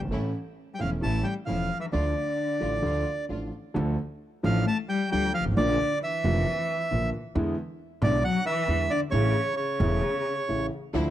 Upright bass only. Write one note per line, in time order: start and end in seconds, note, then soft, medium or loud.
0.02 0.07 G1 medium
0.08 0.13 G#1 medium
0.14 0.32 A1 medium
0.82 1.00 E1 medium
1.04 1.22 A1 medium
1.50 1.68 E1 medium
1.94 2.13 D2 medium
2.61 2.80 A1 medium
2.83 3.03 D2 medium
3.30 3.49 A1 medium
3.76 3.95 D2 loud
4.44 4.63 A1 loud
5.13 5.31 D2 medium
5.41 5.45 G1 medium
5.46 5.51 G#1 medium
5.52 5.56 A1 medium
5.57 5.76 A#1 loud
6.24 6.43 F1 loud
6.92 7.10 A#1 medium
7.36 7.54 E2 loud
8.02 8.20 B1 loud
8.68 8.87 E2 medium
9.12 9.31 A1 loud
9.80 9.99 E1 loud
10.49 10.68 A1 medium
10.94 11.10 D2 loud